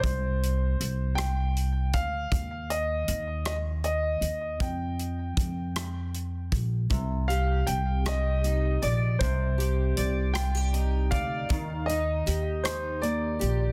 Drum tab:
HH |xxxxxx|xxxxxx|xxxxxx|xxxxxx|
SD |---r--|---r--|---r--|---r--|
BD |o----o|o-----|o-o--o|o-----|

HH |xxxxxx|xxxxxx|
SD |---r--|---r--|
BD |o----o|o-----|